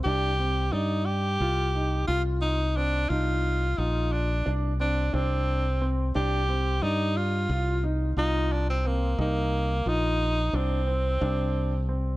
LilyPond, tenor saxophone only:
\new Staff \with { instrumentName = "Tenor saxophone" } { \time 9/8 \key c \minor \tempo 4. = 59 g'4 ees'8 g'4. f'8 ees'8 d'8 | f'4 ees'8 d'8 r8 d'8 c'4 r8 | g'4 ees'8 f'4 r8 ees'8 d'16 c'16 bes8 | bes4 ees'4 c'2 r8 | }